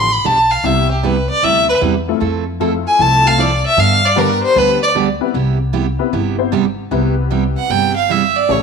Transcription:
0.00 0.19 A1 medium
0.00 0.14 C6 loud
0.12 0.27 B5 medium
0.24 0.58 B1 medium
0.24 0.37 D3 medium
0.24 0.37 F3 medium
0.24 0.37 B3 medium
0.24 0.37 D4 medium
0.24 0.37 G4 medium
0.24 0.53 A5 loud
0.51 0.67 F5 medium
0.64 1.27 C2 medium
0.64 0.87 C3 medium
0.64 0.88 G3 medium
0.64 0.87 G3 medium
0.64 0.88 B3 medium
0.64 0.87 B3 medium
0.64 0.88 C4 medium
0.64 0.88 E4 medium
0.64 0.87 E4 medium
0.64 0.88 G4 medium
0.64 0.87 G4 medium
0.64 0.91 E5 medium
0.91 1.07 G4 soft
1.03 1.15 C3 medium
1.03 1.15 G3 medium
1.03 1.15 B3 medium
1.03 1.16 E4 medium
1.03 1.16 G4 medium
1.03 1.29 B4 medium
1.30 1.46 D5 medium
1.42 1.76 D2 medium
1.42 1.65 C3 medium
1.42 1.65 G3 soft
1.42 1.66 B3 medium
1.42 1.65 E4 medium
1.42 1.65 G4 medium
1.42 1.69 E5 loud
1.69 1.77 B4 medium
1.81 2.15 E2 medium
1.81 1.93 C3 medium
1.81 1.94 G3 medium
1.81 1.93 B3 medium
1.81 1.94 E4 medium
1.81 1.94 G4 medium
2.08 2.20 A3 medium
2.08 2.20 C4 medium
2.08 2.20 E4 medium
2.08 2.20 F4 medium
2.08 2.20 A4 medium
2.20 2.84 F2 medium
2.20 2.43 F3 medium
2.20 2.43 A3 medium
2.20 2.44 C4 medium
2.20 2.44 E4 medium
2.20 2.44 A4 medium
2.60 2.72 F3 medium
2.60 3.20 A3 medium
2.60 2.72 A3 medium
2.60 3.20 C4 medium
2.60 2.72 C4 medium
2.60 3.20 E4 medium
2.60 2.72 E4 medium
2.60 3.21 F4 medium
2.60 3.20 A4 medium
2.60 2.72 A4 medium
2.87 3.03 G#5 loud
2.99 3.62 C2 medium
2.99 3.22 F3 medium
2.99 3.22 A3 medium
2.99 3.22 C4 medium
2.99 3.22 E4 medium
2.99 3.22 A4 medium
2.99 3.29 A5 loud
3.25 3.37 A3 medium
3.25 3.37 C4 medium
3.25 3.37 E4 medium
3.25 3.37 F4 medium
3.25 3.37 A4 medium
3.25 3.42 F5 loud
3.38 3.50 F3 medium
3.38 3.50 A3 medium
3.38 3.50 C4 medium
3.38 3.51 E4 medium
3.38 3.51 A4 medium
3.38 3.66 D5 medium
3.66 3.81 E5 loud
3.77 4.40 G2 medium
3.77 4.00 D3 medium
3.77 4.00 G3 medium
3.77 4.00 B3 medium
3.77 4.00 D4 medium
3.77 4.00 G4 medium
3.77 4.07 F5 loud
4.06 4.20 D5 loud
4.16 4.28 D3 medium
4.16 4.77 G3 medium
4.16 4.29 G3 medium
4.16 4.77 B3 medium
4.16 4.29 B3 medium
4.16 4.77 D4 medium
4.16 4.29 D4 medium
4.16 4.77 G4 medium
4.16 4.29 G4 medium
4.16 4.42 A#4 medium
4.16 4.77 B4 medium
4.43 4.59 C5 loud
4.55 5.18 D2 medium
4.55 4.78 D3 medium
4.55 4.79 G3 medium
4.55 4.79 B3 medium
4.55 4.79 D4 medium
4.55 4.79 G4 medium
4.55 4.82 B4 loud
4.83 4.90 D5 medium
4.95 5.07 D3 medium
4.95 5.07 G3 medium
4.95 5.07 B3 medium
4.95 5.07 D4 medium
4.95 5.07 G4 medium
5.21 5.33 B3 medium
5.21 5.33 C4 medium
5.21 5.33 E4 medium
5.21 5.33 G4 medium
5.21 5.33 B4 medium
5.34 5.97 C2 medium
5.34 5.57 C3 medium
5.34 5.57 G3 medium
5.34 5.57 B3 medium
5.34 5.57 E4 medium
5.34 5.58 G4 medium
5.73 5.85 C3 medium
5.73 5.86 G3 medium
5.73 5.86 B3 medium
5.73 5.86 E4 medium
5.73 5.86 G4 medium
5.99 6.11 B3 medium
5.99 6.11 C4 medium
5.99 6.11 E4 medium
5.99 6.11 G4 medium
5.99 6.11 B4 medium
6.13 6.76 G1 medium
6.13 6.35 C3 medium
6.13 6.36 G3 medium
6.13 6.36 B3 medium
6.13 6.36 E4 medium
6.13 6.36 G4 medium
6.38 6.50 B3 medium
6.38 6.50 C4 medium
6.38 6.51 E4 medium
6.38 6.51 G4 medium
6.38 6.51 C5 medium
6.52 6.64 C3 medium
6.52 6.64 G3 medium
6.52 6.65 B3 medium
6.52 6.65 E4 medium
6.52 6.65 G4 medium
6.91 7.54 C2 medium
6.91 7.14 C3 medium
6.91 7.14 G3 medium
6.91 7.14 B3 medium
6.91 8.01 B3 medium
6.91 8.01 C4 medium
6.91 8.01 E4 medium
6.91 7.14 E4 medium
6.91 8.02 G4 medium
6.91 7.14 G4 medium
6.91 8.01 B4 medium
7.31 7.43 C3 medium
7.31 7.43 G3 medium
7.31 7.43 B3 medium
7.31 7.43 E4 medium
7.31 7.43 G4 medium
7.57 7.72 F#5 medium
7.70 8.33 G1 medium
7.70 7.93 C3 medium
7.70 7.93 G3 medium
7.70 7.93 B3 medium
7.70 7.93 E4 medium
7.70 7.93 G4 medium
7.70 7.96 G5 medium
7.96 8.13 F5 loud
8.09 8.21 C3 medium
8.09 8.22 G3 medium
8.09 8.22 B3 medium
8.09 8.22 E4 medium
8.09 8.22 G4 medium
8.09 8.38 E5 medium
8.36 8.53 D5 loud
8.49 8.62 A1 medium
8.49 8.62 C#3 medium
8.49 8.62 E3 medium
8.49 8.62 A3 medium
8.49 8.62 C#4 medium
8.49 8.62 E4 medium
8.49 8.62 G4 medium
8.49 8.62 A4 medium
8.49 8.62 C#5 medium

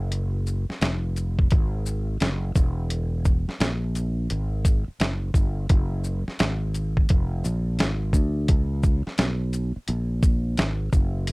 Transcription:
0.00 0.65 F#1 medium
0.12 closed hi-hat medium
0.47 shaker soft
0.69 muted fretless electric bass stroke soft
0.69 snare soft
0.81 1.48 F1 loud
0.81 snare loud
0.81 closed hi-hat medium
1.16 closed hi-hat soft
1.16 shaker soft
1.39 kick medium
1.51 2.18 G#1 loud
1.51 kick loud
1.51 closed hi-hat medium
1.86 shaker medium
2.20 2.54 F#1 loud
2.20 snare loud
2.20 closed hi-hat medium
2.55 3.44 E1 loud
2.55 kick loud
2.55 shaker medium
2.90 closed hi-hat loud
3.25 kick medium
3.25 shaker soft
3.48 muted fretless electric bass stroke soft
3.48 snare soft
3.60 4.27 A#1 loud
3.60 snare loud
3.60 closed hi-hat medium
3.95 closed hi-hat soft
3.95 shaker soft
4.30 4.85 G#1 medium
4.30 closed hi-hat medium
4.65 kick loud
4.65 closed hi-hat medium
4.65 shaker medium
4.88 muted fretless electric bass stroke soft
5.00 5.33 F#1 medium
5.00 snare loud
5.00 closed hi-hat medium
5.34 5.68 G1 medium
5.34 kick medium
5.34 shaker medium
5.69 6.24 F#1 loud
5.69 kick loud
5.69 closed hi-hat medium
6.04 shaker soft
6.28 muted fretless electric bass stroke soft
6.28 snare soft
6.39 7.06 G#1 loud
6.39 snare loud
6.39 closed hi-hat medium
6.74 closed hi-hat soft
6.74 shaker soft
6.97 kick medium
7.09 7.43 F1 medium
7.09 kick loud
7.09 closed hi-hat medium
7.44 7.77 A#1 medium
7.44 shaker medium
7.79 8.12 G#1 loud
7.79 snare loud
7.79 closed hi-hat medium
8.13 8.47 D2 medium
8.13 kick medium
8.13 shaker medium
8.48 9.03 C#2 loud
8.48 kick loud
8.48 closed hi-hat medium
8.83 kick medium
8.83 shaker soft
9.07 muted fretless electric bass stroke soft
9.07 snare soft
9.18 9.73 B1 medium
9.18 snare loud
9.18 closed hi-hat medium
9.53 closed hi-hat soft
9.53 shaker soft
9.76 muted fretless electric bass stroke soft
9.88 10.55 A#1 medium
9.88 closed hi-hat medium
10.23 kick loud
10.23 shaker medium
10.57 10.91 G#1 medium
10.57 snare loud
10.57 closed hi-hat medium
10.93 11.32 F#1 medium
10.93 kick loud
10.93 shaker medium
11.27 closed hi-hat loud

